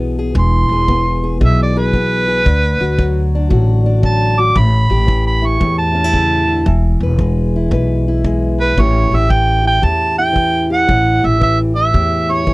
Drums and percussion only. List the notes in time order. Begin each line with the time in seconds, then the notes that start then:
0.35 kick
0.88 kick
1.41 kick
1.93 kick
2.46 kick
2.99 kick
3.51 kick
4.03 kick
4.56 kick
5.08 kick
5.61 kick
6.14 kick
6.66 kick
7.19 kick
7.72 kick
8.24 kick
8.78 kick
9.30 kick
9.83 kick
10.36 kick
10.89 kick
11.41 kick
11.94 kick
12.47 kick